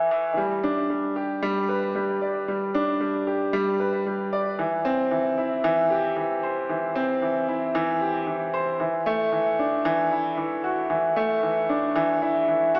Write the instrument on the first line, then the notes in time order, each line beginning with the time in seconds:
upright piano
Already playing: E3 A3
0.11 E3
0.37 G3
0.64 D4
0.90 G3
1.16 G4
1.43 G3
1.69 B4
1.95 G3
2.22 D5
2.48 G3
2.75 D4
3.01 G3
3.27 G4
3.53 G3
3.80 B4
4.07 G3
4.33 D5
4.59 E3
4.85 C4
5.11 E3
5.38 E4
5.64 E3
5.90 G4
6.17 E3
6.43 C5
6.69 E3
6.95 C4
7.22 E3
7.48 E4
7.75 E3
8.01 G4
8.27 E3
8.54 C5
8.80 E3
9.06 A3
9.32 E3
9.59 D4
9.85 E3
10.11 E4
10.38 E3
10.64 F#4
10.90 E3
11.16 A3
11.43 E3
11.69 D4
11.96 E3
12.22 E4
12.48 E3
12.75 F#4